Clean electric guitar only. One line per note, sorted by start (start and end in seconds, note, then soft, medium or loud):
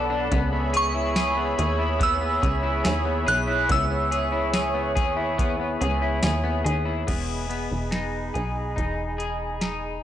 0.00 0.40 F#3 medium
0.00 0.31 B3 medium
0.00 0.40 A4 medium
0.10 0.40 D4 medium
0.31 0.52 B3 medium
0.53 1.37 B3 medium
0.73 1.16 G#4 medium
0.94 1.79 E4 medium
1.16 1.58 G#4 medium
1.37 1.99 B3 medium
1.58 2.41 G#4 medium
1.79 2.62 E4 medium
1.99 2.21 B3 medium
2.21 3.05 B3 medium
2.42 2.83 G#4 medium
2.63 3.47 E4 medium
2.84 3.26 G#4 medium
3.05 3.68 B3 medium
3.26 4.11 G#4 medium
3.47 4.32 E4 medium
3.69 3.90 B3 medium
3.90 4.74 B3 medium
4.11 4.53 G#4 medium
4.32 5.16 E4 medium
4.53 4.95 G#4 medium
4.74 5.38 B3 medium
4.95 5.80 G#4 medium
5.16 6.01 E4 medium
5.38 5.59 B3 medium
5.59 6.43 B3 medium
5.81 6.22 G#4 medium
6.02 6.85 E4 medium
6.23 6.64 G#4 medium
6.44 7.07 B3 medium
6.64 7.07 G#4 medium
6.85 7.91 E4 medium
7.07 7.48 B3 medium
7.07 8.33 G#4 medium
7.49 10.02 B3 soft
7.91 8.75 D#4 soft
8.34 9.17 G#4 medium
8.76 9.60 D#4 medium
9.18 10.03 G#4 medium
9.61 10.03 D#4 medium